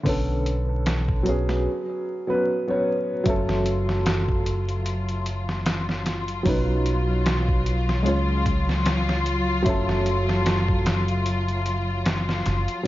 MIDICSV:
0, 0, Header, 1, 5, 480
1, 0, Start_track
1, 0, Key_signature, 3, "minor"
1, 0, Tempo, 800000
1, 35, Time_signature, 4, 2, 24, 8
1, 7723, End_track
2, 0, Start_track
2, 0, Title_t, "Upright piano"
2, 0, Program_c, 0, 0
2, 0, Control_c, 0, 64, 127
2, 19, Note_on_c, 0, 50, 86
2, 30, Note_on_c, 0, 59, 76
2, 42, Note_on_c, 0, 61, 79
2, 44, Control_c, 0, 64, 0
2, 53, Note_on_c, 0, 69, 91
2, 147, Control_c, 0, 64, 127
2, 722, Note_off_c, 0, 50, 0
2, 727, Note_off_c, 0, 59, 0
2, 733, Note_off_c, 0, 61, 0
2, 739, Note_off_c, 0, 69, 0
2, 739, Note_on_c, 0, 54, 89
2, 750, Note_on_c, 0, 59, 77
2, 763, Note_on_c, 0, 61, 72
2, 773, Note_on_c, 0, 68, 93
2, 1004, Control_c, 0, 64, 0
2, 1095, Control_c, 0, 64, 127
2, 1335, Note_off_c, 0, 54, 0
2, 1341, Note_off_c, 0, 59, 0
2, 1347, Note_off_c, 0, 61, 0
2, 1352, Note_off_c, 0, 68, 0
2, 1363, Note_on_c, 0, 54, 94
2, 1369, Note_on_c, 0, 59, 85
2, 1373, Note_on_c, 0, 61, 84
2, 1379, Note_on_c, 0, 71, 100
2, 1479, Note_off_c, 0, 54, 0
2, 1482, Note_off_c, 0, 59, 0
2, 1484, Note_off_c, 0, 61, 0
2, 1487, Note_off_c, 0, 71, 0
2, 1605, Note_on_c, 0, 54, 90
2, 1610, Note_on_c, 0, 59, 91
2, 1616, Note_on_c, 0, 61, 83
2, 1622, Note_on_c, 0, 73, 102
2, 1720, Note_off_c, 0, 54, 0
2, 1723, Note_off_c, 0, 59, 0
2, 1726, Note_off_c, 0, 61, 0
2, 1729, Note_off_c, 0, 73, 0
2, 1942, Note_on_c, 0, 54, 96
2, 1954, Note_on_c, 0, 57, 88
2, 1962, Control_c, 0, 64, 0
2, 1968, Note_on_c, 0, 61, 84
2, 1976, Note_on_c, 0, 69, 101
2, 2059, Control_c, 0, 64, 127
2, 3827, Note_off_c, 0, 54, 0
2, 3833, Note_off_c, 0, 57, 0
2, 3840, Note_off_c, 0, 61, 0
2, 3844, Note_off_c, 0, 69, 0
2, 3859, Note_on_c, 0, 54, 82
2, 3870, Note_on_c, 0, 61, 76
2, 3883, Control_c, 0, 64, 0
2, 3883, Note_on_c, 0, 63, 74
2, 3894, Note_on_c, 0, 71, 83
2, 3995, Control_c, 0, 64, 127
2, 4785, Note_off_c, 0, 54, 0
2, 4791, Note_off_c, 0, 61, 0
2, 4797, Note_off_c, 0, 63, 0
2, 4803, Note_off_c, 0, 71, 0
2, 4816, Note_on_c, 0, 56, 76
2, 4830, Note_on_c, 0, 61, 69
2, 4841, Note_on_c, 0, 65, 67
2, 4844, Control_c, 0, 64, 0
2, 4852, Note_on_c, 0, 73, 87
2, 4942, Control_c, 0, 64, 127
2, 5744, Note_off_c, 0, 56, 0
2, 5751, Note_off_c, 0, 61, 0
2, 5756, Note_off_c, 0, 65, 0
2, 5762, Note_off_c, 0, 73, 0
2, 5775, Note_on_c, 0, 54, 100
2, 5788, Note_on_c, 0, 57, 88
2, 5798, Note_on_c, 0, 61, 84
2, 5804, Control_c, 0, 64, 0
2, 5812, Note_on_c, 0, 69, 98
2, 5895, Control_c, 0, 64, 127
2, 7663, Note_off_c, 0, 54, 0
2, 7670, Note_off_c, 0, 57, 0
2, 7675, Note_off_c, 0, 61, 0
2, 7682, Note_off_c, 0, 69, 0
2, 7700, Note_on_c, 0, 54, 78
2, 7723, Note_off_c, 0, 54, 0
2, 7723, End_track
3, 0, Start_track
3, 0, Title_t, "String section"
3, 0, Program_c, 1, 48
3, 1957, Note_on_c, 1, 54, 88
3, 1957, Note_on_c, 1, 65, 93
3, 7723, Note_off_c, 1, 54, 0
3, 7723, Note_off_c, 1, 65, 0
3, 7723, End_track
4, 0, Start_track
4, 0, Title_t, "Fingered electric bass"
4, 0, Program_c, 2, 33
4, 37, Note_on_c, 2, 35, 97
4, 996, Note_off_c, 2, 35, 0
4, 1955, Note_on_c, 2, 30, 89
4, 3855, Note_off_c, 2, 30, 0
4, 3875, Note_on_c, 2, 35, 98
4, 4837, Note_off_c, 2, 35, 0
4, 4837, Note_on_c, 2, 37, 91
4, 5776, Note_off_c, 2, 37, 0
4, 5797, Note_on_c, 2, 30, 99
4, 7456, Note_off_c, 2, 30, 0
4, 7480, Note_on_c, 2, 30, 82
4, 7596, Note_off_c, 2, 30, 0
4, 7723, End_track
5, 0, Start_track
5, 0, Title_t, "Drums"
5, 35, Note_on_c, 9, 36, 110
5, 36, Note_on_c, 9, 46, 75
5, 95, Note_off_c, 9, 36, 0
5, 96, Note_off_c, 9, 46, 0
5, 277, Note_on_c, 9, 42, 62
5, 337, Note_off_c, 9, 42, 0
5, 516, Note_on_c, 9, 42, 90
5, 520, Note_on_c, 9, 38, 114
5, 576, Note_off_c, 9, 42, 0
5, 580, Note_off_c, 9, 38, 0
5, 650, Note_on_c, 9, 36, 96
5, 710, Note_off_c, 9, 36, 0
5, 755, Note_on_c, 9, 42, 63
5, 815, Note_off_c, 9, 42, 0
5, 894, Note_on_c, 9, 38, 43
5, 954, Note_off_c, 9, 38, 0
5, 1954, Note_on_c, 9, 36, 110
5, 1954, Note_on_c, 9, 42, 86
5, 2014, Note_off_c, 9, 36, 0
5, 2014, Note_off_c, 9, 42, 0
5, 2094, Note_on_c, 9, 38, 46
5, 2154, Note_off_c, 9, 38, 0
5, 2194, Note_on_c, 9, 42, 68
5, 2254, Note_off_c, 9, 42, 0
5, 2334, Note_on_c, 9, 38, 46
5, 2394, Note_off_c, 9, 38, 0
5, 2436, Note_on_c, 9, 42, 86
5, 2439, Note_on_c, 9, 38, 118
5, 2496, Note_off_c, 9, 42, 0
5, 2499, Note_off_c, 9, 38, 0
5, 2571, Note_on_c, 9, 36, 96
5, 2631, Note_off_c, 9, 36, 0
5, 2678, Note_on_c, 9, 42, 70
5, 2738, Note_off_c, 9, 42, 0
5, 2812, Note_on_c, 9, 42, 44
5, 2872, Note_off_c, 9, 42, 0
5, 2915, Note_on_c, 9, 42, 84
5, 2975, Note_off_c, 9, 42, 0
5, 3051, Note_on_c, 9, 42, 43
5, 3111, Note_off_c, 9, 42, 0
5, 3156, Note_on_c, 9, 42, 67
5, 3216, Note_off_c, 9, 42, 0
5, 3293, Note_on_c, 9, 38, 44
5, 3353, Note_off_c, 9, 38, 0
5, 3395, Note_on_c, 9, 42, 83
5, 3398, Note_on_c, 9, 38, 109
5, 3455, Note_off_c, 9, 42, 0
5, 3458, Note_off_c, 9, 38, 0
5, 3534, Note_on_c, 9, 38, 40
5, 3594, Note_off_c, 9, 38, 0
5, 3635, Note_on_c, 9, 42, 62
5, 3639, Note_on_c, 9, 38, 49
5, 3695, Note_off_c, 9, 42, 0
5, 3699, Note_off_c, 9, 38, 0
5, 3769, Note_on_c, 9, 42, 45
5, 3829, Note_off_c, 9, 42, 0
5, 3873, Note_on_c, 9, 46, 74
5, 3874, Note_on_c, 9, 36, 107
5, 3933, Note_off_c, 9, 46, 0
5, 3934, Note_off_c, 9, 36, 0
5, 4115, Note_on_c, 9, 42, 65
5, 4175, Note_off_c, 9, 42, 0
5, 4355, Note_on_c, 9, 42, 93
5, 4359, Note_on_c, 9, 38, 115
5, 4415, Note_off_c, 9, 42, 0
5, 4419, Note_off_c, 9, 38, 0
5, 4491, Note_on_c, 9, 36, 96
5, 4551, Note_off_c, 9, 36, 0
5, 4598, Note_on_c, 9, 42, 70
5, 4658, Note_off_c, 9, 42, 0
5, 4734, Note_on_c, 9, 38, 43
5, 4794, Note_off_c, 9, 38, 0
5, 4836, Note_on_c, 9, 42, 86
5, 4896, Note_off_c, 9, 42, 0
5, 5075, Note_on_c, 9, 36, 96
5, 5075, Note_on_c, 9, 42, 65
5, 5135, Note_off_c, 9, 36, 0
5, 5135, Note_off_c, 9, 42, 0
5, 5215, Note_on_c, 9, 38, 39
5, 5275, Note_off_c, 9, 38, 0
5, 5314, Note_on_c, 9, 42, 86
5, 5317, Note_on_c, 9, 38, 109
5, 5374, Note_off_c, 9, 42, 0
5, 5377, Note_off_c, 9, 38, 0
5, 5454, Note_on_c, 9, 38, 49
5, 5514, Note_off_c, 9, 38, 0
5, 5556, Note_on_c, 9, 42, 66
5, 5616, Note_off_c, 9, 42, 0
5, 5795, Note_on_c, 9, 36, 109
5, 5795, Note_on_c, 9, 42, 86
5, 5855, Note_off_c, 9, 36, 0
5, 5855, Note_off_c, 9, 42, 0
5, 5935, Note_on_c, 9, 38, 49
5, 5995, Note_off_c, 9, 38, 0
5, 6036, Note_on_c, 9, 42, 66
5, 6096, Note_off_c, 9, 42, 0
5, 6175, Note_on_c, 9, 38, 46
5, 6235, Note_off_c, 9, 38, 0
5, 6275, Note_on_c, 9, 42, 88
5, 6279, Note_on_c, 9, 38, 118
5, 6335, Note_off_c, 9, 42, 0
5, 6339, Note_off_c, 9, 38, 0
5, 6410, Note_on_c, 9, 36, 94
5, 6470, Note_off_c, 9, 36, 0
5, 6516, Note_on_c, 9, 42, 83
5, 6519, Note_on_c, 9, 38, 99
5, 6576, Note_off_c, 9, 42, 0
5, 6579, Note_off_c, 9, 38, 0
5, 6650, Note_on_c, 9, 42, 43
5, 6710, Note_off_c, 9, 42, 0
5, 6755, Note_on_c, 9, 42, 90
5, 6815, Note_off_c, 9, 42, 0
5, 6891, Note_on_c, 9, 42, 40
5, 6951, Note_off_c, 9, 42, 0
5, 6995, Note_on_c, 9, 42, 66
5, 7055, Note_off_c, 9, 42, 0
5, 7234, Note_on_c, 9, 42, 85
5, 7237, Note_on_c, 9, 38, 114
5, 7294, Note_off_c, 9, 42, 0
5, 7297, Note_off_c, 9, 38, 0
5, 7373, Note_on_c, 9, 38, 42
5, 7433, Note_off_c, 9, 38, 0
5, 7474, Note_on_c, 9, 42, 68
5, 7478, Note_on_c, 9, 38, 52
5, 7534, Note_off_c, 9, 42, 0
5, 7538, Note_off_c, 9, 38, 0
5, 7609, Note_on_c, 9, 42, 45
5, 7669, Note_off_c, 9, 42, 0
5, 7723, End_track
0, 0, End_of_file